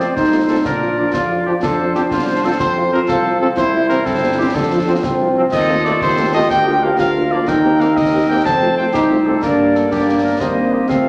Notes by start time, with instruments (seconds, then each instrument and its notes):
Already playing: euphonium C4, woodwind section A4 C5
0.00 cornet D5, snare
0.15 tuba C2, euphonium D#4, cornet C5, concert bass drum, snare
0.32 french horn section A3 C4 F4
0.49 trombone section F3 C4, french horn section A3 C4 F4, cornet A4
0.64 tuba A#2, euphonium D4, woodwind section F4 D5, cornet A#4, concert bass drum, snare
0.81 french horn section F3 D4 F4
0.97 trombone section F3 D4, french horn section F3 D4 F4
1.14 tuba F2, euphonium F4, cornet F4, concert bass drum, snare
1.30 french horn section F3 D4 F4
1.46 trombone section F3 D4, french horn section F3 D4 F4, cornet G4
1.62 tuba F2, euphonium D4, woodwind section F4 C5, cornet A4, concert bass drum, snare, crash
1.79 french horn section F3 C4 F4
1.94 trombone section F3 C4, french horn section F3 C4 F4, cornet G4, snare
2.11 tuba C2, cornet F4, concert bass drum, snare
2.28 french horn section F3 C4 F4
2.43 trombone section F3 C4, french horn section F3 C4 F4, cornet A4
2.59 tuba F2, euphonium C4, cornet C5, concert bass drum, snare
2.77 french horn section F3 C4 F4
2.92 trombone section F3 C4, french horn section F3 C4 F4, cornet A#4
3.08 tuba C2, euphonium F4, cornet A4, concert bass drum, snare
3.25 french horn section F3 C4 F4
3.40 trombone section F3 C4, french horn section F3 C4 F4, cornet A4
3.57 tuba C2, woodwind section E4 C5, euphonium E4, cornet C5, concert bass drum, snare
3.74 french horn section G3 C4 E4
3.89 trombone section E3 C4, french horn section G3 C4 E4, cornet A#4, snare
4.05 tuba G1, euphonium C4, cornet A4, concert bass drum, snare
4.22 french horn section G3 C4 E4
4.38 trombone section E3 C4, french horn section G3 C4 E4, cornet G4
4.55 tuba F2, euphonium D4, woodwind section F4, cornet A4, concert bass drum, snare
4.72 french horn section F3 C4 F4
4.87 french horn section F3 C4 F4, trombone section F3 C4
5.03 tuba C2, euphonium C4, concert bass drum, snare
5.20 french horn section F3 C4 F4
5.36 trombone section F3 C4, french horn section F3 C4 F4
5.52 tuba D#2, woodwind section A4, cornet D#5, concert bass drum, snare, crash
5.69 french horn section A3 C4 F4
5.85 trombone section F3 A3, french horn section A3 C4 F4, cornet D5, snare
6.01 tuba D#2, euphonium G4, cornet C5, concert bass drum, snare
6.18 french horn section A3 C4 F4
6.34 trombone section F3 A3, french horn section A3 C4 F4, cornet D#5
6.50 tuba D2, woodwind section F4 A#4, cornet G5, concert bass drum, snare
6.67 french horn section A#3 D4 F4
6.83 trombone section F3 A#3, french horn section A#3 D4 F4, cornet F5
6.99 tuba D2, euphonium F4, cornet F5, concert bass drum, snare
7.16 french horn section A#3 D4 F4
7.31 trombone section F3 A#3, french horn section A#3 D4 F4, cornet D5
7.47 tuba D#2, woodwind section C4, euphonium D#4, cornet G5, concert bass drum, snare
7.64 french horn section A#3 C4 G4
7.80 trombone section C3 A#3, french horn section A#3 C4 G4, cornet F5, snare
7.96 tuba D#2, cornet D#5, concert bass drum, snare
8.13 french horn section A#3 C4 G4
8.29 trombone section C3 A#3, french horn section A#3 C4 G4, cornet G5
8.45 tuba F2, euphonium C4, woodwind section C5, cornet A5, concert bass drum, snare
8.62 french horn section A3 C4 F4
8.77 trombone section C3 C4, french horn section A3 C4 F4, cornet G5
8.93 tuba C2, euphonium D#4, cornet G4, concert bass drum, snare
9.10 french horn section A3 C4 F4
9.25 trombone section C3 C4, french horn section A3 C4 F4, cornet A4
9.41 tuba G2, trombone section D3 A#3, french horn section G3 A#3 D4, woodwind section A#3 D5, euphonium D4, cornet A#4, concert bass drum, snare, crash
9.75 cornet A4, snare
9.91 tuba G2, trombone section D3 A#3, french horn section G3 A#3 D4, euphonium A#3, cornet G4, concert bass drum, snare
10.24 cornet A#4
10.40 tuba D#2, trombone section G3 A#3, french horn section G3 A#3 C4, cornet C5, woodwind section D#5, concert bass drum, snare
10.73 cornet G4
10.88 tuba F2, trombone section F3 C4, french horn section F3 A3 C4, woodwind section C4 F5, euphonium C4, cornet A4, concert bass drum, snare